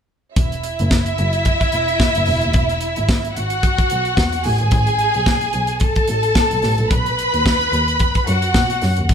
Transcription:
0.36 E1 E4 E5, kick, closed hi-hat
0.52 closed hi-hat
0.64 closed hi-hat
0.79 F#1, closed hi-hat
0.91 kick, snare
1.06 closed hi-hat
1.18 F#1, closed hi-hat
1.33 closed hi-hat
1.45 kick, closed hi-hat
1.61 kick, closed hi-hat
1.72 E1, closed hi-hat
1.88 closed hi-hat
2.00 kick, snare
2.15 F#1, closed hi-hat
2.26 E1, open hi-hat
2.41 D#2, closed hi-hat
2.53 E1, kick, closed hi-hat
2.69 closed hi-hat
2.81 closed hi-hat
2.96 G#1, closed hi-hat
3.09 kick, snare
3.25 closed hi-hat
3.35 G#1 F#4 F#5, closed hi-hat
3.50 closed hi-hat
3.63 kick, closed hi-hat
3.78 kick, closed hi-hat
3.90 B1, closed hi-hat
4.05 closed hi-hat
4.17 E2, kick, snare
4.33 closed hi-hat
4.44 A1 G#4 G#5, open hi-hat
4.58 G#1, closed hi-hat
4.71 A1, kick, closed hi-hat
4.87 closed hi-hat
4.99 closed hi-hat
5.14 B1, closed hi-hat
5.26 kick, snare
5.41 closed hi-hat
5.53 B1, closed hi-hat
5.67 closed hi-hat
5.80 A4 A5, kick, closed hi-hat
5.96 kick, closed hi-hat
6.07 A1, closed hi-hat
6.23 closed hi-hat
6.35 kick, snare
6.51 B1, closed hi-hat
6.62 A1, snare, open hi-hat
6.78 A#1, closed hi-hat
6.90 B1 B4 B5, kick, closed hi-hat
7.06 closed hi-hat
7.19 closed hi-hat
7.33 D#2, closed hi-hat
7.46 kick, snare
7.61 closed hi-hat
7.72 D#2, closed hi-hat
7.88 closed hi-hat
7.99 kick, closed hi-hat
8.15 kick, closed hi-hat
8.27 F#2 F#4 F#5, closed hi-hat
8.42 closed hi-hat
8.54 B2, kick, snare
8.70 closed hi-hat
8.81 F#2, snare, open hi-hat
8.97 D#2, closed hi-hat
9.09 E1, kick, crash

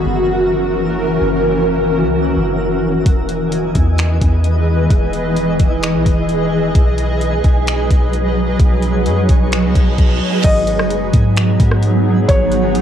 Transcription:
Already playing: E3 C#4 F#4 A#4 E5 A#5
0.06 F#1
1.21 F#1
2.02 C#2
2.37 F#1
3.06 E1 E3 E4 G#4 B4 D#5 G#5, kick, closed hi-hat
3.29 closed hi-hat
3.40 D#1
3.52 closed hi-hat
3.75 E2, kick, closed hi-hat
3.98 finger snap, closed hi-hat
4.21 E2, kick, closed hi-hat
4.44 closed hi-hat
4.90 E1, kick, closed hi-hat
5.13 closed hi-hat
5.36 closed hi-hat
5.59 E1, kick, closed hi-hat
5.83 finger snap, closed hi-hat
5.94 B1
6.06 E1, kick, closed hi-hat
6.29 closed hi-hat
6.75 B1 F#3 D#4 B4, kick, closed hi-hat
6.98 closed hi-hat
7.21 closed hi-hat
7.44 B1, kick, closed hi-hat
7.67 finger snap, closed hi-hat
7.91 B1, kick, closed hi-hat
8.13 closed hi-hat
8.60 B1 C#5, kick, closed hi-hat
8.82 closed hi-hat
9.06 F#2, closed hi-hat
9.29 B1, kick, closed hi-hat
9.52 finger snap, closed hi-hat, reverse cymbal
9.64 C#2
9.75 B1, kick, closed hi-hat
9.98 B1, kick, closed hi-hat
10.44 G#1 F#3 B3 D#4 F#4 G#4 B4 D#5 G#5, kick, closed hi-hat, crash
10.67 closed hi-hat
10.79 F#1, cross-stick
10.90 closed hi-hat
11.13 G#2, kick, closed hi-hat
11.37 finger snap, closed hi-hat
11.60 G#2, kick, closed hi-hat
11.72 cross-stick
11.83 closed hi-hat
12.29 G#1 C#5, kick, closed hi-hat
12.52 closed hi-hat
12.75 closed hi-hat

